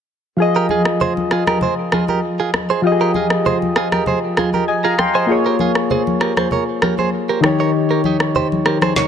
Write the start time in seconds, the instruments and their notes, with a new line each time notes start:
0.37 synth keys F3 F4 G#4
0.42 synth keys D#5
0.56 clean electric guitar G4 A#4
0.69 clean electric guitar F4 G#4, high conga
0.85 cross-stick
1.01 clean electric guitar G#4 C5, low conga
1.17 high conga
1.31 clean electric guitar F4 G#4, cross-stick
1.47 clean electric guitar G4 A#4, cross-stick, high conga
1.61 clean electric guitar G#4 C5, low conga
1.92 clean electric guitar F4 G#4, cross-stick, high conga
2.08 clean electric guitar G4 A#4, high conga
2.40 clean electric guitar F4 G#4
2.54 cross-stick, high conga
2.70 clean electric guitar G#4 C5
2.82 synth keys F3 F4 G4
2.87 synth keys D#5
2.92 synth keys G#4
3.01 clean electric guitar G4 A#4
3.14 clean electric guitar F4 G#4, high conga
3.30 cross-stick
3.46 clean electric guitar G#4 C5, low conga
3.62 high conga
3.76 clean electric guitar F4 G#4, cross-stick
3.92 clean electric guitar G4 A#4, cross-stick, high conga
4.06 clean electric guitar G#4 C5, low conga
4.37 clean electric guitar F4 G#4, cross-stick, high conga
4.53 clean electric guitar G4 A#4, high conga
4.68 synth keys D#5 G#5
4.84 clean electric guitar F4 G#4, synth keys F5 A#5
4.98 synth keys G5 C6, cross-stick, high conga
5.14 clean electric guitar G#4 C5, synth keys D#5 G#5
5.26 synth keys A#3 F4 G#4
5.32 synth keys C#5
5.46 clean electric guitar G4 A#4
5.59 clean electric guitar F4 G#4, high conga
5.75 cross-stick
5.90 clean electric guitar G#4 C5, low conga
6.07 high conga
6.21 clean electric guitar G4 A#4, cross-stick
6.37 clean electric guitar G#4 C5, cross-stick, high conga
6.51 clean electric guitar A#4 C#5, low conga
6.82 clean electric guitar G4 A#4, cross-stick, high conga
6.98 clean electric guitar G#4 C5, high conga
7.29 clean electric guitar G4 A#4
7.41 synth keys D#3 D#4 G4, cross-stick, high conga
7.46 synth keys C#5
7.60 clean electric guitar A#4 C#5
7.91 clean electric guitar G4 A#4
8.04 clean electric guitar D#4 G4, high conga
8.20 cross-stick
8.35 clean electric guitar G4 C5, low conga
8.52 high conga
8.66 clean electric guitar G4 A#4, cross-stick
8.82 clean electric guitar G#4 C5, cross-stick, high conga
8.96 clean electric guitar A#4 C#5, snare, low conga